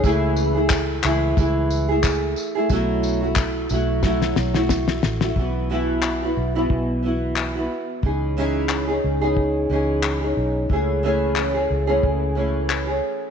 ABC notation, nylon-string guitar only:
X:1
M:4/4
L:1/16
Q:"Swing 16ths" 1/4=90
K:Bmix
V:1 name="Nylon-string guitar"
[C,E,A,EG]3 [A,EG]3 [E,A,EG]2 [E,A,EG]3 [A,EG]4 [A,EG] | [B,,F,A,EF]3 [A,EF]3 [F,A,EF]2 [F,A,EF]3 [A,EF]4 [A,EF] | [E,B,EF]2 [B,,E,B,EF]3 [B,EF]2 [B,,E,B,EF]3 [E,B,EF]3 [B,EF]3 | [E,CDG]2 [C,E,CDG]3 [CDG]2 [C,E,CDG]3 [E,CDG]3 [CDG]3 |
[E,A,CG]2 [C,E,A,CG]3 [A,CG]2 [C,E,A,CG]3 [E,A,CG]3 [A,CG]3 |]